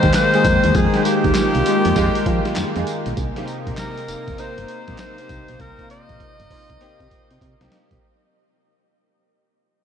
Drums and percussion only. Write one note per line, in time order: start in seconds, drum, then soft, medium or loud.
0.03 kick medium
0.03 snare medium
0.03 closed hi-hat medium
0.13 snare loud
0.13 clap loud
0.13 closed hi-hat medium
0.13 tambourine medium
0.34 closed hi-hat medium
0.44 kick loud
0.44 closed hi-hat medium
0.44 tambourine medium
0.64 closed hi-hat medium
0.75 kick loud
0.75 closed hi-hat medium
0.75 tambourine medium
0.94 snare medium
0.94 closed hi-hat soft
1.05 closed hi-hat medium
1.05 tambourine medium
1.24 kick medium
1.24 closed hi-hat medium
1.34 snare loud
1.34 clap medium
1.34 closed hi-hat medium
1.34 tambourine loud
1.55 closed hi-hat soft
1.66 closed hi-hat medium
1.66 tambourine medium
1.85 closed hi-hat medium
1.96 kick medium
1.96 closed hi-hat medium
1.96 tambourine medium
2.15 closed hi-hat medium
2.26 kick loud
2.26 closed hi-hat medium
2.45 snare medium
2.45 closed hi-hat medium
2.56 snare loud
2.56 clap loud
2.56 closed hi-hat medium
2.56 tambourine loud
2.76 closed hi-hat medium
2.87 closed hi-hat medium
2.87 tambourine medium
3.06 closed hi-hat medium
3.17 kick loud
3.17 closed hi-hat medium
3.17 tambourine medium
3.36 snare medium
3.36 closed hi-hat soft
3.48 closed hi-hat medium
3.48 tambourine medium
3.67 kick medium
3.67 closed hi-hat medium
3.77 snare loud
3.77 clap medium
3.77 closed hi-hat medium
3.77 tambourine medium
3.98 closed hi-hat soft
4.08 closed hi-hat loud
4.08 tambourine medium
4.28 kick loud
4.28 closed hi-hat medium
4.38 closed hi-hat medium
4.38 tambourine medium
4.58 closed hi-hat medium
4.68 closed hi-hat medium
4.88 kick medium
4.88 snare medium
4.88 closed hi-hat medium
4.98 snare loud
4.98 clap medium
4.98 closed hi-hat medium
4.98 tambourine loud
5.18 closed hi-hat medium
5.29 kick medium
5.29 closed hi-hat medium
5.29 tambourine medium
5.48 closed hi-hat medium
5.60 kick medium
5.60 closed hi-hat medium
5.79 kick medium
5.79 closed hi-hat soft
5.90 closed hi-hat medium
6.09 kick medium
6.09 closed hi-hat medium
6.20 kick medium
6.20 closed hi-hat medium
6.40 closed hi-hat soft
6.50 kick medium
6.50 open hi-hat loud
6.70 kick medium
6.70 closed hi-hat medium
6.81 closed hi-hat medium
7.00 kick medium
7.00 closed hi-hat medium
7.11 kick loud
7.11 closed hi-hat medium
7.31 closed hi-hat medium
7.41 kick medium
7.41 closed hi-hat medium
7.61 snare loud
7.61 closed hi-hat medium
7.72 snare loud
7.72 closed hi-hat medium
7.91 kick loud
7.91 closed hi-hat medium